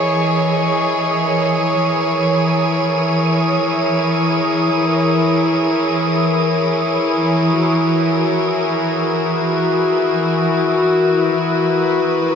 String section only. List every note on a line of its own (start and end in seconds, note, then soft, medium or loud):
0.00 12.35 E3 medium
0.00 12.35 E4 medium
0.00 10.70 G#4 medium
0.00 12.35 A#4 medium
0.00 8.89 C#5 medium
0.00 1.74 D#5 medium
7.52 12.35 F#4 medium
11.14 12.35 B4 medium